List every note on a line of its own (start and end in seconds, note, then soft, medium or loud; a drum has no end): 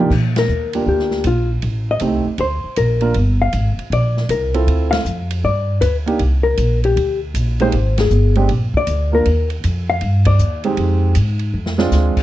0.10 0.47 A#2 medium
0.10 kick medium
0.10 crash medium
0.36 0.85 A#4 medium
0.36 snare medium
0.36 ride medium
0.48 0.85 D#2 medium
0.48 hi-hat pedal medium
0.73 1.23 A#3 medium
0.73 1.23 D4 medium
0.73 1.23 F4 medium
0.73 1.23 G4 medium
0.73 ride medium
0.86 1.23 D2 medium
0.86 1.23 G4 medium
0.99 snare soft
1.11 snare soft
1.24 1.61 A#1 medium
1.24 1.50 F4 medium
1.24 hi-hat pedal medium
1.24 ride medium
1.62 2.00 A1 medium
1.62 ride medium
1.91 2.37 D#5 medium
2.00 2.24 C2 medium
2.00 2.23 A3 medium
2.00 2.23 C4 soft
2.00 2.24 D#4 soft
2.00 2.24 G4 medium
2.00 hi-hat pedal soft
2.00 ride medium
2.26 muted upright bass stroke soft
2.38 2.62 D2 medium
2.38 2.75 C5 medium
2.38 ride soft
2.64 muted upright bass stroke soft
2.76 3.14 A#1 medium
2.76 3.02 A#4 medium
2.76 hi-hat pedal medium
2.76 ride medium
3.01 3.13 A#3 medium
3.01 3.13 D4 medium
3.01 3.14 F4 medium
3.01 3.14 A#4 medium
3.01 ride soft
3.14 3.52 G1 medium
3.14 ride medium
3.42 3.88 F5 medium
3.53 3.76 G#1 medium
3.53 hi-hat pedal medium
3.53 ride medium
3.77 muted upright bass stroke soft
3.77 ride soft
3.90 4.28 A#1 medium
3.90 4.28 D5 medium
3.90 ride medium
4.17 snare soft
4.29 4.66 C2 medium
4.29 4.54 A#4 medium
4.29 hi-hat pedal soft
4.29 ride medium
4.54 5.03 C4 medium
4.54 5.03 E4 medium
4.54 5.03 F4 medium
4.54 5.03 A4 medium
4.54 ride soft
4.67 5.04 D2 medium
4.67 ride medium
4.91 5.39 F5 medium
4.91 snare medium
4.91 ride medium
5.05 5.42 F2 medium
5.05 hi-hat pedal soft
5.31 ride medium
5.44 5.80 G2 medium
5.44 5.80 D5 medium
5.81 6.18 D2 medium
5.81 5.96 B4 medium
5.81 hi-hat pedal medium
5.81 ride medium
6.06 6.18 A#3 medium
6.06 6.19 D4 medium
6.06 6.19 D#4 medium
6.06 6.19 G4 medium
6.06 ride soft
6.19 6.57 C2 medium
6.19 ride medium
6.43 6.80 A#4 medium
6.57 6.95 A#1 medium
6.57 hi-hat pedal medium
6.57 ride medium
6.84 7.19 G4 medium
6.84 ride soft
6.96 7.33 D2 medium
6.96 ride medium
7.34 7.71 A#1 medium
7.34 hi-hat pedal medium
7.34 ride medium
7.60 7.72 G#3 medium
7.60 7.72 A#3 medium
7.60 7.72 D#4 medium
7.60 7.72 G4 medium
7.60 7.96 C5 medium
7.60 ride soft
7.72 8.10 G#1 medium
7.72 ride medium
7.98 8.35 G#4 medium
7.98 snare medium
7.98 ride medium
8.10 8.48 G1 medium
8.10 hi-hat pedal medium
8.35 8.48 G#3 medium
8.35 8.48 C4 medium
8.35 8.48 D4 medium
8.35 8.48 G4 medium
8.35 ride soft
8.49 8.72 A#1 medium
8.49 ride medium
8.74 9.11 D5 medium
8.74 muted upright bass stroke soft
8.74 kick medium
8.87 9.24 D2 medium
8.87 hi-hat pedal soft
8.87 ride medium
9.12 9.24 A#3 medium
9.12 9.24 D4 medium
9.12 9.24 F4 medium
9.12 9.24 A#4 medium
9.12 9.49 A#4 medium
9.25 9.62 D#2 medium
9.25 ride medium
9.50 ride soft
9.64 10.00 F2 medium
9.64 hi-hat pedal medium
9.64 ride medium
9.90 10.24 F5 medium
10.01 10.38 G2 medium
10.01 ride medium
10.25 10.62 D5 medium
10.25 kick medium
10.25 ride medium
10.39 10.76 D#2 medium
10.39 hi-hat pedal medium
10.64 11.13 G#3 medium
10.64 11.13 C4 medium
10.64 11.13 D#4 medium
10.64 11.13 G4 medium
10.64 ride soft
10.77 11.14 F2 medium
10.77 ride medium
11.15 11.53 G#2 medium
11.15 hi-hat pedal soft
11.15 ride medium
11.39 ride soft
11.54 11.91 F2 medium
11.66 snare soft
11.78 12.23 G#3 medium
11.78 12.23 C4 medium
11.78 12.23 D4 medium
11.78 12.23 F4 medium
11.78 snare medium
11.92 12.15 D2 medium
11.92 snare medium
11.92 hi-hat pedal medium
12.17 muted upright bass stroke soft
12.17 kick medium
12.17 crash medium